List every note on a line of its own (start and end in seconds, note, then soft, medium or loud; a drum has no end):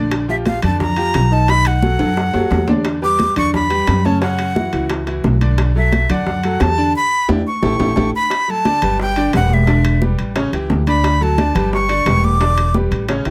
0.00 0.57 A#1 medium
0.00 0.23 D3 medium
0.00 0.23 D4 medium
0.00 0.23 D5 medium
0.11 high bongo medium
0.11 high conga soft
0.11 high timbale loud
0.28 0.57 F3 medium
0.28 0.57 F4 medium
0.28 0.57 G4 medium
0.28 0.36 E5 medium
0.28 high bongo soft
0.28 high conga soft
0.46 0.63 F5 medium
0.46 high bongo soft
0.46 high conga medium
0.46 high timbale medium
0.62 1.11 F2 medium
0.62 0.91 D3 medium
0.62 0.91 D4 medium
0.62 0.91 D5 medium
0.62 0.80 A5 medium
0.62 high bongo soft
0.62 high conga soft
0.62 low conga medium
0.62 high timbale loud
0.80 1.34 A#5 loud
0.80 high bongo medium
0.80 high conga soft
0.80 low conga medium
0.96 1.25 F3 medium
0.96 1.25 F4 medium
0.96 1.26 G4 medium
0.96 high bongo soft
0.96 high conga soft
0.96 high timbale medium
1.14 1.94 B1 medium
1.14 high bongo medium
1.14 low bongo medium
1.14 high conga soft
1.14 high timbale medium
1.31 1.45 D#3 medium
1.31 1.46 D#4 medium
1.31 1.46 D#5 medium
1.31 1.51 A5 loud
1.48 1.77 D#3 medium
1.48 1.77 D#4 medium
1.48 1.77 D#5 medium
1.48 1.68 B5 loud
1.48 high bongo medium
1.48 high conga soft
1.48 high timbale medium
1.65 2.69 F#5 loud
1.65 high bongo soft
1.65 high conga soft
1.65 high timbale loud
1.82 1.97 F#3 medium
1.82 1.97 F#4 medium
1.82 1.97 A4 medium
1.82 high bongo soft
1.82 high conga medium
1.99 2.32 F#2 medium
1.99 2.28 F#3 medium
1.99 2.28 F#4 medium
1.99 2.28 A4 medium
1.99 high bongo soft
1.99 high conga soft
1.99 high timbale medium
2.17 high bongo medium
2.17 high conga soft
2.34 2.50 F#2 medium
2.34 2.62 F#3 medium
2.34 2.63 F#4 medium
2.34 2.63 A4 medium
2.34 high bongo soft
2.34 high conga soft
2.34 low timbale medium
2.51 3.31 E2 medium
2.51 high bongo medium
2.51 low bongo medium
2.51 high conga medium
2.51 low timbale medium
2.68 2.97 D3 medium
2.68 2.97 D4 medium
2.68 2.97 D5 medium
2.68 high conga medium
2.68 low timbale medium
2.85 high bongo medium
2.85 high conga soft
2.85 high timbale medium
3.02 3.30 G3 medium
3.02 3.31 G4 medium
3.02 3.30 B4 medium
3.02 3.35 D6 loud
3.02 high bongo soft
3.02 high conga soft
3.19 high bongo medium
3.19 high conga loud
3.19 high timbale medium
3.36 3.84 E2 medium
3.36 3.64 D3 medium
3.36 3.64 D4 medium
3.36 3.65 D5 medium
3.36 3.53 C#6 medium
3.36 high bongo soft
3.36 high conga soft
3.36 low conga medium
3.36 high timbale medium
3.54 4.07 B5 loud
3.54 high bongo medium
3.54 high conga soft
3.54 low conga medium
3.70 3.98 G3 medium
3.70 3.98 G4 medium
3.70 3.99 B4 medium
3.70 high bongo soft
3.70 high conga soft
3.70 high timbale medium
3.87 4.67 F#2 medium
3.87 high bongo medium
3.87 low bongo medium
3.87 high conga soft
3.87 high timbale medium
4.05 4.19 C#3 medium
4.05 4.19 C#4 medium
4.05 4.19 C#5 medium
4.05 4.21 A5 medium
4.05 high conga medium
4.21 4.50 C#3 medium
4.21 4.50 C#4 medium
4.21 4.50 C#5 medium
4.21 4.86 F#5 medium
4.21 high bongo medium
4.21 high timbale medium
4.39 high bongo soft
4.39 high conga soft
4.39 high timbale medium
4.55 4.70 E3 medium
4.55 4.70 E4 medium
4.55 4.70 F#4 medium
4.55 high bongo medium
4.55 high conga medium
4.73 5.21 C#2 medium
4.73 5.01 E3 medium
4.73 5.01 E4 medium
4.73 5.01 F#4 medium
4.73 high bongo soft
4.73 high conga soft
4.73 high timbale medium
4.89 high bongo medium
4.89 high conga soft
4.89 high timbale medium
5.07 5.35 E3 medium
5.07 5.35 E4 medium
5.07 5.35 F#4 medium
5.07 high bongo soft
5.07 high conga soft
5.07 high timbale medium
5.24 6.04 B1 loud
5.24 high bongo medium
5.24 low bongo medium
5.24 high conga medium
5.41 5.69 D3 medium
5.41 5.70 D4 medium
5.41 5.70 D5 medium
5.41 high conga medium
5.41 high timbale medium
5.58 high bongo medium
5.58 high conga soft
5.58 high timbale loud
5.75 6.04 F#3 medium
5.75 6.04 F#4 medium
5.75 6.04 A4 medium
5.75 6.12 E5 medium
5.75 high bongo soft
5.75 high conga soft
5.92 high bongo medium
5.92 high conga medium
5.92 high timbale medium
6.09 6.57 F#2 medium
6.09 6.38 D3 medium
6.09 6.38 D4 medium
6.09 6.38 D5 medium
6.09 6.64 F#5 medium
6.09 high bongo soft
6.09 high conga soft
6.09 low conga medium
6.09 high timbale medium
6.27 high bongo medium
6.27 high conga soft
6.27 low conga medium
6.43 6.72 F#3 medium
6.43 6.72 F#4 medium
6.43 6.72 A4 medium
6.43 high bongo soft
6.43 high conga soft
6.43 high timbale medium
6.60 6.92 E2 medium
6.60 6.95 A5 loud
6.60 high bongo medium
6.60 low bongo medium
6.60 high conga soft
6.60 high timbale medium
6.60 low timbale medium
6.78 6.92 D3 medium
6.78 6.92 D4 medium
6.78 6.92 D5 medium
6.96 7.27 B5 loud
7.28 7.41 E2 medium
7.28 7.40 D4 medium
7.28 7.40 E4 medium
7.28 7.39 G4 medium
7.28 high bongo medium
7.28 high conga loud
7.28 high timbale loud
7.47 8.11 C#6 medium
7.62 7.75 A1 loud
7.62 7.74 E4 loud
7.62 7.74 G4 loud
7.62 7.74 A4 loud
7.62 high bongo loud
7.62 high conga loud
7.62 high timbale medium
7.79 7.93 A1 loud
7.79 7.91 E4 medium
7.79 7.91 G4 medium
7.79 7.91 A4 medium
7.79 high bongo loud
7.79 high conga loud
7.79 high timbale loud
7.96 8.10 A1 loud
7.96 8.08 E4 medium
7.96 8.08 G4 medium
7.96 8.08 A4 loud
7.96 high bongo loud
7.96 high conga medium
7.96 high timbale loud
8.15 8.52 B5 loud
8.30 high bongo medium
8.30 high conga soft
8.30 high timbale loud
8.48 8.62 F#3 medium
8.48 8.63 F#4 medium
8.48 8.63 A4 medium
8.48 9.00 A5 loud
8.48 high bongo soft
8.48 high conga soft
8.65 8.79 D3 medium
8.65 8.80 D4 medium
8.65 8.80 D5 medium
8.65 high bongo medium
8.65 high conga medium
8.65 high timbale medium
8.82 9.30 G1 medium
8.82 9.10 G3 medium
8.82 9.10 G4 medium
8.82 9.11 B4 medium
8.82 high bongo soft
8.82 high conga soft
8.82 low conga medium
8.82 high timbale medium
9.00 9.32 G5 medium
9.00 high bongo medium
9.00 high conga soft
9.16 9.31 D3 medium
9.16 9.31 D4 medium
9.16 9.31 D5 medium
9.16 high bongo soft
9.16 high conga soft
9.16 high timbale medium
9.33 10.13 E1 loud
9.33 9.61 G3 medium
9.33 9.62 G4 medium
9.33 9.62 B4 medium
9.33 9.55 F#5 medium
9.33 high bongo medium
9.33 low bongo medium
9.33 high conga soft
9.33 high timbale medium
9.50 10.03 E5 medium
9.50 high conga medium
9.67 9.95 D3 medium
9.67 9.95 D4 medium
9.67 9.96 D5 medium
9.67 high bongo medium
9.67 high conga soft
9.67 high timbale medium
9.85 high bongo soft
9.85 high conga soft
9.85 high timbale loud
10.02 10.29 G3 medium
10.02 10.30 G4 medium
10.02 10.30 B4 medium
10.02 high bongo medium
10.02 high conga loud
10.19 10.50 A1 medium
10.19 high bongo soft
10.19 high conga soft
10.19 high timbale medium
10.36 10.50 C#3 medium
10.36 10.50 C#4 medium
10.36 10.50 C#5 medium
10.36 high bongo medium
10.36 high conga soft
10.36 high timbale medium
10.52 10.68 C#2 medium
10.52 10.81 E3 medium
10.52 10.81 E4 medium
10.52 10.81 G4 medium
10.52 high bongo soft
10.52 high conga soft
10.52 high timbale medium
10.70 11.49 D2 loud
10.70 high bongo medium
10.70 low bongo medium
10.70 high conga medium
10.87 11.15 D3 medium
10.87 11.15 D4 medium
10.87 11.15 D5 medium
10.87 11.24 B5 medium
10.87 high conga medium
10.87 high timbale medium
11.04 high bongo medium
11.04 high conga soft
11.04 high timbale medium
11.21 11.35 F#3 medium
11.21 11.35 F#4 medium
11.21 11.35 A4 medium
11.21 11.73 A5 medium
11.21 high bongo soft
11.21 high conga soft
11.37 11.51 D3 medium
11.37 11.52 D4 medium
11.37 11.52 D5 medium
11.37 high bongo medium
11.37 high conga medium
11.37 high timbale medium
11.55 12.03 G1 medium
11.55 11.83 G3 medium
11.55 11.83 G4 medium
11.55 11.83 B4 medium
11.55 high bongo soft
11.55 high conga soft
11.55 low conga medium
11.55 high timbale medium
11.72 12.26 C#6 loud
11.72 high bongo medium
11.72 high conga soft
11.89 12.03 D3 medium
11.89 12.03 D4 medium
11.89 12.03 D5 medium
11.89 high bongo soft
11.89 high conga soft
11.89 high timbale medium
12.06 12.85 E1 medium
12.06 12.34 G3 medium
12.06 12.34 G4 medium
12.06 12.34 B4 medium
12.06 high bongo medium
12.06 low bongo medium
12.06 high conga soft
12.06 high timbale loud
12.23 12.75 D6 loud
12.23 high conga medium
12.40 12.68 D3 medium
12.40 12.68 D4 medium
12.40 12.68 D5 medium
12.40 high bongo medium
12.40 high conga soft
12.40 high timbale medium
12.57 high bongo soft
12.57 high conga soft
12.57 high timbale loud
12.74 13.02 G3 medium
12.74 13.02 G4 medium
12.74 13.03 B4 medium
12.74 high bongo medium
12.74 high conga loud
12.91 13.23 A1 medium
12.91 high bongo soft
12.91 high conga soft
12.91 high timbale medium
13.08 13.22 C#3 medium
13.08 13.23 C#4 medium
13.08 13.23 C#5 medium
13.08 high bongo medium
13.08 high conga soft
13.08 high timbale medium
13.25 13.30 C#2 medium
13.25 13.30 E3 medium
13.25 13.30 E4 medium
13.25 13.30 G4 medium
13.25 high bongo soft
13.25 high conga soft
13.25 high timbale medium